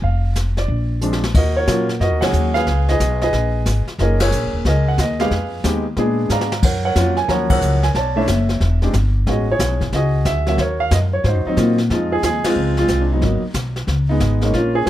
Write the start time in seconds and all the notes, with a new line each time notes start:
0.02 F1 F5, brush sweep, kick
0.35 snare, hi-hat pedal
0.57 D5, snare
0.68 A#1, brush sweep, kick
1.01 F3 G#3 C4 D4, hi-hat pedal
1.13 snare
1.24 snare
1.34 D#2 F#4 A#4 D#5, brush sweep, kick, snare, crash
1.57 F#4 A#4 C#5
1.67 A#2 F#3 A#3 C#4 F4, kick, snare, hi-hat pedal
1.89 snare
2.00 F#2 F#4 A#4 D#5, brush sweep, kick, snare
2.11 D#2
2.21 C#2 F#3 A#3 C#4 G#4 A#4 C#5 F#5, snare, ride
2.33 D#2, hi-hat pedal
2.54 G#4 B4 F5, snare
2.67 C#2, brush sweep, kick, snare
2.88 G#4 B4 D#5, snare
3.00 B1, kick, snare, hi-hat pedal
3.21 G#4 B4 D#5, snare
3.33 A#1, brush sweep, kick, snare
3.66 G#1, kick, snare, hi-hat pedal
3.87 muted upright bass stroke, snare
3.99 F#1 A#3 C#4 D#4 G#4 A#4 D#5, brush sweep, kick, snare
4.20 G#4 A#4 C#5, snare, ride
4.31 A#1, hi-hat pedal
4.43 F#1
4.53 D#1
4.65 C#2 G#4 A#4 D#5, brush sweep, kick, snare
4.88 F#5
4.98 D#2 D#5, kick, snare, hi-hat pedal
5.20 G#3 B3 D#4 G4 G#4 B4 F5, snare
5.31 F2, brush sweep, kick, snare
5.64 D#2 G#3 B3 D#4 G4, kick, snare, hi-hat pedal
5.97 A#2 G#3 B3 D4 G#4, brush sweep, kick, snare
6.29 G#2 D5 F5 A#5, snare, hi-hat pedal
6.41 snare
6.52 snare
6.62 F#2 A#4 C#5 F#5, brush sweep, kick, snare, crash
6.85 A#4 C#5 F#5
6.95 F2 F#3 A#3 C#4 F4, kick, snare, hi-hat pedal
7.17 G#5, snare
7.28 D#2 F3 F#3 A#3 C#4 C#5 F#5 A#5, brush sweep, kick, snare
7.50 A#4 C#5 F#5, kick, ride
7.61 C#2, hi-hat pedal
7.83 G#5, snare
7.94 B1 C#5 D5 A5, brush sweep, kick, snare
8.16 A3 C#4 D4 E4 A4 C#5 E5
8.27 F#1, kick, snare, hi-hat pedal
8.49 snare
8.60 E1, brush sweep, kick, snare
8.82 G#3 C4 D4 G4, snare
8.93 G1, kick, snare, hi-hat pedal
9.26 A1 G#3 B3 C#4 F#4 G#4 D#5, brush sweep, kick, snare
9.52 E4 G#4 C#5
9.59 B1, kick, snare, hi-hat pedal
9.81 kick, snare
9.92 C#2 F#4 G#4 D#5, brush sweep, kick, snare
10.25 D2 E5, kick, snare, hi-hat pedal
10.46 F#3 A#3 C#4 F#4 E5, snare
10.58 D#2 C#5, brush sweep, kick, snare
10.62 F#4 A#4
10.80 F5
10.91 F#2 D#5, kick, snare, hi-hat pedal
11.13 C#5
11.24 G#2 C5, brush sweep, kick, snare
11.28 D#4 F#4
11.35 F#2
11.46 D#2 F#3 C4 D#4
11.57 A#2 F#3 A#3 C4 F4, kick, snare, hi-hat pedal
11.78 snare
11.90 F2 F3 G#3 C4 D#4 F4, brush sweep, kick, snare
12.12 G#4
12.23 D#2 G#4, kick, snare, hi-hat pedal
12.44 G#3 C4 F4, muted upright bass stroke, snare, ride
12.56 C#2, brush sweep
12.77 G#3 C4 F4, snare
12.88 C2, kick, snare, hi-hat pedal
13.02 D4
13.12 F#3 B3 D#4
13.21 G#1 F#3 A#3 B3 D#4, brush sweep, kick, snare
13.43 muted upright bass stroke
13.54 B1, kick, snare, hi-hat pedal
13.76 snare
13.87 C#2, brush sweep, kick, snare
14.09 G#3 B3 D#4
14.20 G#1, kick, snare, hi-hat pedal
14.41 G#3 A#3 C#4 D#4, snare
14.53 A#1 C#4 F4, brush sweep, kick, snare
14.57 A#3
14.75 G#4
14.86 C2 G#3 G#4, kick, hi-hat pedal